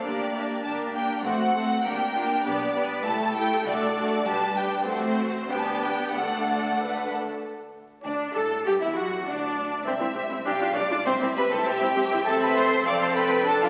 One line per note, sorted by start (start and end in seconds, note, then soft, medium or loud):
0.03 0.54 G1 soft
0.03 0.32 A#3 soft
0.03 0.32 D4 soft
0.03 0.33 G4 soft
0.03 0.33 A#4 soft
0.03 0.62 D5 medium
0.34 0.62 A#3 soft
0.34 0.62 D4 soft
0.34 0.42 E4 soft
0.34 0.63 G4 soft
0.34 0.63 A#4 soft
0.63 1.15 G1 soft
0.63 0.93 A#3 soft
0.63 0.93 D4 soft
0.63 1.23 D4 soft
0.63 0.93 G4 soft
0.63 0.93 A#4 soft
0.63 0.71 A5 medium
0.94 1.23 A#3 soft
0.94 1.24 D4 soft
0.94 1.23 G4 soft
0.94 1.24 A#4 soft
0.94 1.16 G5 soft
1.17 1.24 G5 soft
1.24 1.75 A1 medium
1.24 1.54 A3 soft
1.24 1.54 C4 soft
1.24 1.54 F#4 soft
1.24 1.54 C5 soft
1.24 1.85 F#5 medium
1.55 1.84 A3 soft
1.55 1.84 C4 soft
1.55 1.85 F#4 soft
1.55 1.63 A4 soft
1.55 1.85 C5 soft
1.85 2.36 G1 soft
1.85 2.15 A#3 soft
1.85 2.15 D4 soft
1.85 2.14 G4 soft
1.85 1.93 A#4 soft
1.85 2.15 A#4 soft
1.85 2.46 G5 medium
2.15 2.45 A#3 soft
2.15 2.44 D4 soft
2.15 2.23 F4 soft
2.15 2.44 G4 soft
2.15 2.45 A#4 soft
2.45 2.96 B1 medium
2.45 2.73 B3 soft
2.45 2.74 D4 soft
2.45 2.54 G4 soft
2.45 2.75 G4 soft
2.45 3.04 D5 medium
2.74 3.04 B3 soft
2.74 3.05 D4 soft
2.74 3.05 G4 soft
2.74 3.05 B4 medium
3.05 3.56 C2 medium
3.05 3.35 A3 soft
3.05 3.34 E4 soft
3.05 3.35 G4 soft
3.05 4.26 A4 medium
3.05 3.34 A4 soft
3.05 3.35 A5 medium
3.35 3.64 A3 soft
3.35 3.65 E4 soft
3.35 3.65 G4 soft
3.35 3.65 A4 soft
3.35 3.65 G5 medium
3.66 4.16 C2 medium
3.66 3.95 A3 soft
3.66 3.95 D4 medium
3.66 3.95 F#4 soft
3.66 3.95 A4 medium
3.66 4.26 D5 medium
3.96 4.25 A3 soft
3.96 4.24 D4 soft
3.96 4.26 F#4 soft
3.96 4.26 A4 soft
4.25 4.77 B1 medium
4.25 4.55 G3 soft
4.25 4.55 D4 soft
4.25 4.85 G4 medium
4.25 4.56 G4 soft
4.25 4.55 B4 medium
4.25 4.56 A5 medium
4.56 4.86 G3 soft
4.56 4.86 D4 soft
4.56 4.86 G4 soft
4.56 4.86 B4 soft
4.56 4.87 G5 medium
4.87 5.47 A1 medium
4.87 5.47 A3 medium
4.87 5.46 C4 medium
4.87 5.47 F#4 soft
4.87 4.95 A4 medium
4.87 5.50 C5 medium
4.87 5.47 C5 medium
5.19 5.27 F#4 soft
5.51 6.13 G1 soft
5.51 6.15 B3 soft
5.51 6.14 D4 soft
5.51 6.13 G4 soft
5.51 6.15 G4 soft
5.51 6.15 B4 soft
5.51 5.59 G5 medium
5.59 5.67 A5 medium
5.67 5.76 G5 soft
5.75 5.84 A5 soft
5.83 6.14 G5 medium
6.14 7.20 D2 soft
6.14 7.22 A3 soft
6.14 7.20 D4 soft
6.14 7.11 A4 soft
6.14 6.73 A4 soft
6.14 6.71 D5 soft
6.14 7.09 F#5 medium
6.80 7.09 B4 medium
7.13 7.43 A4 soft
8.04 8.12 D2 soft
8.04 8.33 D4 medium
8.04 8.13 D4 medium
8.04 8.13 D5 soft
8.35 8.66 A2 medium
8.35 8.66 A4 medium
8.35 8.44 A4 medium
8.35 8.44 A5 soft
8.66 8.81 G2 medium
8.66 8.72 G4 medium
8.66 8.72 G5 medium
8.81 8.96 E2 soft
8.81 8.96 E4 soft
8.81 8.96 E4 medium
8.81 8.87 E4 medium
8.81 8.88 E5 medium
8.96 9.26 F#2 medium
8.96 9.26 F#4 medium
8.96 9.04 F#4 medium
8.96 9.26 F#4 medium
8.96 9.26 F#5 medium
9.26 9.86 D2 soft
9.26 9.85 D4 medium
9.26 9.85 D4 soft
9.26 9.85 D4 medium
9.26 9.87 D5 medium
9.85 9.93 C2 medium
9.85 9.92 C4 medium
9.85 10.42 E5 medium
10.00 10.08 C2 soft
10.00 10.06 C4 soft
10.00 10.06 E4 soft
10.15 10.24 C2 soft
10.15 10.21 C4 soft
10.15 10.21 G4 soft
10.30 10.39 C2 soft
10.30 10.37 C4 soft
10.30 10.36 E4 soft
10.45 10.53 B1 medium
10.45 10.52 D4 medium
10.45 10.74 G4 medium
10.45 11.07 F5 soft
10.45 10.75 G5 medium
10.61 10.69 B1 medium
10.61 10.67 D4 medium
10.61 10.67 F4 soft
10.76 10.84 B1 medium
10.76 10.82 D4 medium
10.76 10.82 G4 medium
10.76 11.06 D5 medium
10.76 11.06 D6 medium
10.91 10.98 B1 medium
10.91 10.97 D4 medium
10.91 10.97 F4 medium
11.06 11.13 C2 medium
11.06 11.12 C4 medium
11.06 11.14 C5 medium
11.06 12.25 E5 medium
11.06 11.14 C6 medium
11.21 11.28 C2 soft
11.21 11.27 C4 medium
11.21 11.28 E4 soft
11.36 11.43 C2 soft
11.36 11.42 C4 soft
11.36 11.42 G4 soft
11.36 11.51 B4 medium
11.36 11.43 B5 medium
11.51 11.57 C2 medium
11.51 11.57 C4 medium
11.51 11.57 E4 soft
11.51 11.66 A4 medium
11.51 11.66 A5 medium
11.65 11.72 C2 medium
11.65 11.72 C4 medium
11.65 12.25 G4 medium
11.65 12.26 G5 medium
11.81 11.88 C2 medium
11.81 11.87 C4 medium
11.81 11.88 E4 medium
11.96 12.03 C2 medium
11.96 12.03 C4 medium
11.96 12.02 G4 medium
12.11 12.17 C2 medium
12.11 12.17 C4 medium
12.11 12.17 E4 medium
12.25 12.82 A1 medium
12.25 12.82 C4 medium
12.25 12.82 A4 medium
12.25 12.32 A4 medium
12.25 12.83 E5 medium
12.25 12.41 A5 medium
12.41 12.57 B4 medium
12.41 12.56 B5 medium
12.56 12.87 C5 medium
12.56 12.86 C6 medium
12.85 13.69 F1 medium
12.85 13.45 C4 medium
12.85 13.45 A4 medium
12.85 12.92 D5 medium
12.85 13.16 F5 medium
12.85 12.92 D6 medium
13.02 13.17 C5 medium
13.02 13.08 C6 medium
13.16 13.46 B4 medium
13.16 13.46 G5 medium
13.16 13.24 B5 medium
13.45 13.69 D4 medium
13.45 13.69 A4 medium
13.45 13.53 A4 medium
13.45 13.69 A5 medium
13.45 13.62 A5 medium
13.62 13.69 F4 medium
13.62 13.69 F5 medium